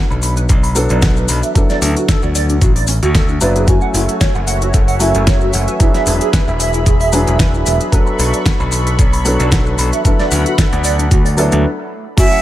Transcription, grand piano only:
Already playing: F#3 B3 D4 A4
0.75 F#3 B3 D4 A4
1.55 D3 F#3 B3 E4 A4
3.41 F#3 B3 D4 E4 B4
3.67 F#3 A3 C#4 E4 G#5
4.99 F#3 A3 C#4 E4 G#5
5.79 F#3 B3 D4 E4 G#4
7.12 F#3 B3 D4 E4 G#4
7.92 F#3 B3 D4 A4
9.25 F#3 B3 D4 A4
10.04 D3 F#3 B3 E4 A4
11.37 F#3 B3 D4 E4 A4
12.17 F#3 A3 C#4 E4 G#5

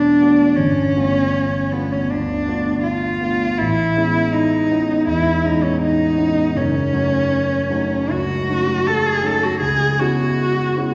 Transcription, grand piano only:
Already playing: B2 A3 B3 F#4
0.21 A3 B3 F#4
0.57 G1
0.95 A3 B3 D4 F4
1.72 A3 B3 D4 F4
2.11 D2
2.47 A3 B3 D4 F4
3.21 A3 B3 D4 F4
3.59 A1
3.96 G#3 B3 C#4 E4
4.70 G#3 B3 C#4 E4
5.07 E2
5.44 G#3 B3 C#4 E4
6.17 G#3 B3 C#4 E4
6.56 F#1
6.93 F#3 A3 C#4 D#4
7.70 F#3 A3 C#4 D#4
8.10 C#2
8.49 F#3 A3 C#4 D#4
9.23 F#3 A3 C#4 D#4
9.61 C#2
9.98 G#3 B3 C#4 E4
10.76 G#3 B3 C#4 E4

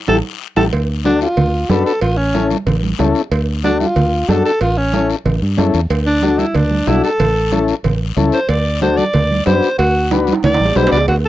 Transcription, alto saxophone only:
0.08 A4
0.57 A4
1.05 D4
1.22 F4
1.70 A4
1.86 A4
2.02 F4
2.17 C#4
3.64 D4
3.80 F4
4.29 A4
4.45 A4
4.61 F4
4.78 C#4
6.06 D4
6.39 E4
6.55 D4
6.88 E4
7.04 A4
8.33 C5
8.49 D5
8.82 C5
8.97 D5
9.46 C5
9.78 F#4
10.44 D5
10.77 C5
10.92 D5
11.08 F#4
11.25 A4

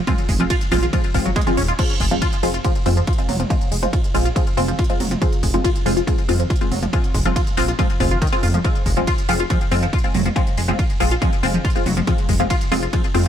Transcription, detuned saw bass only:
0.29 F1
0.72 A#1
1.14 G#1
1.57 D#1
2.00 F1
2.43 F1
2.86 F2
3.29 F1
3.72 F1
4.15 A#1
4.57 F1
5.00 F1
5.43 F1
5.86 F1
6.29 F2
6.72 F1
7.15 F1
7.57 A#1
8.00 F1
8.43 F2
8.86 F1
9.29 F1
9.72 F2
10.15 F1
10.58 F1
11.00 A#1
11.43 F1
11.86 F1
12.29 F1
12.72 F1
13.14 F2

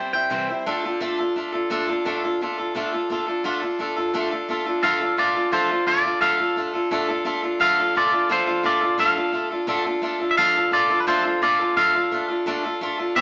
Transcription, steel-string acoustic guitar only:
Already playing: G3 C4 E4 C5
0.13 G3 C4 E4 C5
0.30 C3 E3 G3 C4 E4 C5
0.49 G3 C4 E4 C5
0.66 D3 A3 D4 F4 A4
0.84 D4 F4 A4
1.00 D3 A3 D4 F4 A4
1.19 D4 F4 A4
1.36 A3 D4 F4 A4
1.52 D4 F4 A4
1.70 D3 A3 D4 F4 A4
1.88 D4 F4 A4
2.05 D3 A3 D4 F4 A4
2.24 D4 F4 A4
2.41 A3 D4 F4 A4
2.58 D4 F4 A4
2.75 D3 A3 D4 F4 A4
2.93 D4 F4 A4
3.10 A3 D4 F4 A4
3.27 D4 F4 A4
3.44 D3 A3 D4 F4 A4
3.60 D4 F4 A4
3.79 A3 D4 F4 A4
3.97 D4 F4 A4
4.14 D3 A3 D4 F4 A4
4.31 D4 F4 A4
4.48 A3 D4 F4 A4
4.65 D4 F4 A4
4.83 D3 A3 D4 F4 A4
5.00 D4 F4 A4
5.17 A3 D4 F4 A4
5.34 D4 F4 A4
5.52 D3 A3 D4 F4 A4
5.69 D4 F4 A4
5.87 A3 D4 F4 A4
6.03 D4 F4 A4
6.21 D3 A3 D4 F4 A4
6.38 D4 F4 A4
6.56 A3 D4 F4 A4
6.73 D4 F4 A4
6.91 D3 A3 D4 F4 A4
7.08 D4 F4 A4
7.25 A3 D4 F4 A4
7.42 D4 F4 A4
7.60 D3 A3 D4 F4 A4
7.78 D4 F4 A4
7.95 A3 D4 F4 A4
8.12 D4 F4 A4
8.29 D3 A3 D4 F4 A4
8.46 D4 F4 A4
8.63 A3 D4 F4 A4
8.81 D4 F4 A4
8.98 D3 A3 D4 F4 A4
9.15 D4 F4 A4
9.32 A3 D4 F4 A4
9.50 D4 F4 A4
9.67 D3 A3 D4 F4 A4
9.85 D4 F4 A4
10.02 A3 D4 F4 A4
10.20 D4 F4 A4
10.37 D3 A3 D4 F4 A4
10.55 D4 F4 A4
10.71 A3 D4 F4 A4
10.89 D4 F4 A4
11.07 D3 A3 D4 F4 A4
11.23 D4 F4 A4
11.42 A3 D4 F4 A4
11.59 D4 F4 A4
11.76 D3 A3 D4 F4 A4
11.94 D4 F4 A4
12.11 A3 D4 F4 A4
12.28 D4 F4 A4
12.46 D3 A3 D4 F4 A4
12.63 D4 F4 A4
12.81 A3 D4 F4 A4
12.98 D4 F4 A4
13.16 C3 E3 G3 C4 E4 C5

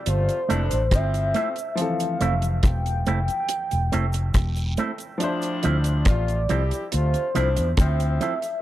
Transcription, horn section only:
0.05 C3 A3 F4
0.47 B2 D3 D4
0.91 A2 F3 C4
5.21 A2 F3 D4
6.06 C3 A3 F4
6.49 G3 E4 G4
6.92 C3 A3 F4
7.34 A2 F3 D4
7.77 A2 F3 C4

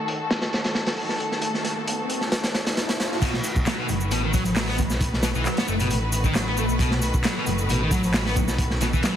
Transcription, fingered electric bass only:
3.56 B1
3.89 F#1
4.12 A1
4.91 B1
5.35 B1
5.68 F#1
5.91 A1
6.69 B1
7.14 B1
7.47 F#1
7.69 A1
8.48 B1
8.94 B1

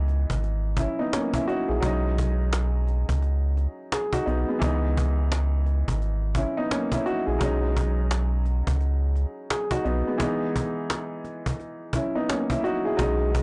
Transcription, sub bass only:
Already playing: C#2
0.30 G#1
1.69 A#1
1.83 B1
3.09 C#2
4.27 B1
4.62 C#2
5.88 G#1
7.27 A#1
7.41 B1
8.67 C#2
9.85 B1
12.99 B1

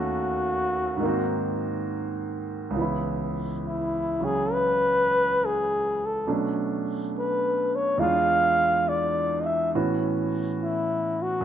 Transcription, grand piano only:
Already playing: D#2 D#3 A3 C#4 F#4
0.97 G#2 D#3
1.03 A#3 C4
1.08 F#4
2.71 C#2 C#3
2.77 E3 B3
2.82 E4
4.20 C#3 F#3 C#4
6.27 B2 F#3 A3 C#4 D4
7.98 E2 E3 G#3
8.02 D4 F4
9.75 A2 E3 B3 C#4 F#4
11.41 F#2

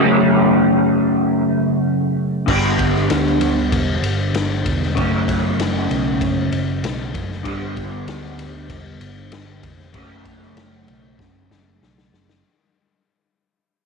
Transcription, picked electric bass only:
2.48 G1
2.79 G1
3.10 D2
3.41 D2
3.73 E1
4.03 G1
4.34 G1
4.66 E1
4.97 F#1
5.59 F#1
5.90 B1
6.21 F#1
6.52 F#1
6.83 B1
7.15 F#1
7.46 G1
7.77 G1
8.07 D2
8.38 D2
8.70 E1
9.01 G1
9.32 G1
9.64 F1
9.94 F#1
10.57 F#1
10.88 B1
11.19 F#1
11.51 F#1
11.82 B1
12.12 F#1

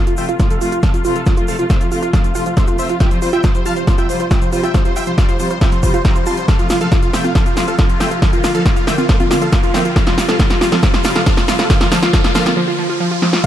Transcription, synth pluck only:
0.07 F4
0.18 F3
0.29 F4
0.40 F4
0.51 F3
0.61 F4
0.72 F4
0.83 F3
0.94 F4
1.05 F4
1.16 F3
1.26 F4
1.37 F4
1.48 F3
1.59 F4
1.70 F4
1.81 F3
1.92 F4
2.03 F4
2.13 F3
2.24 F4
2.35 F4
2.46 F3
2.57 F4
2.68 F4
2.79 F3
2.90 F4
3.00 F4
3.11 F3
3.22 F4
3.33 F4
3.44 F3
3.55 F4
3.66 F4
3.76 F3
3.87 F4
3.98 F4
4.09 F3
4.20 F4
4.31 F4
4.42 F3
4.53 F4
4.63 F4
4.74 F3
4.85 F4
4.96 F4
5.07 F3
5.18 F4
5.29 F4
5.40 F3
5.50 F4
5.61 F4
5.72 F3
5.83 F4
5.94 F4
6.05 F3
6.16 F4
6.27 F4
6.37 F3
6.48 F3
6.59 F4
6.70 F4
6.81 F3
6.92 F4
7.03 F4
7.14 F3
7.24 F4
7.35 F3
7.46 F4
7.57 F4
7.68 F3
7.79 F4
7.90 F4
8.00 F3
8.11 F4
8.22 F3
8.33 F4
8.44 F4
8.55 F3
8.66 F4
8.76 F4
8.87 F3
8.98 F4
9.09 F3
9.20 F4
9.31 F4
9.42 F3
9.52 F4
9.63 F4
9.74 F3
9.85 F4
9.96 F3
10.07 F4
10.18 F4
10.28 F3
10.39 F3
10.50 F4
10.61 F4
10.72 F3
10.83 F3
10.94 F4
11.05 F4
11.16 F3
11.26 F3
11.37 F4
11.48 F4
11.59 F3
11.70 F3
11.81 F4
11.92 F3
12.02 F4
12.13 F3
12.24 F4
12.35 F3
12.46 F4
12.57 F3
12.68 F4
12.79 F3
12.89 F4
13.00 F3
13.11 F4
13.22 F3
13.33 F4

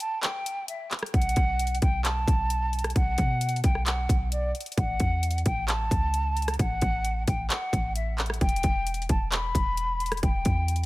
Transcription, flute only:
0.00 A5
0.23 G5
0.68 E5
1.14 F#5
1.82 G5
2.05 A5
2.96 F#5
3.64 G5
3.87 F#5
4.32 D5
4.77 F#5
5.46 G5
5.68 A5
6.59 F#5
7.27 G5
7.50 F#5
7.96 E5
8.41 G5
9.09 A5
9.32 B5
10.23 G5

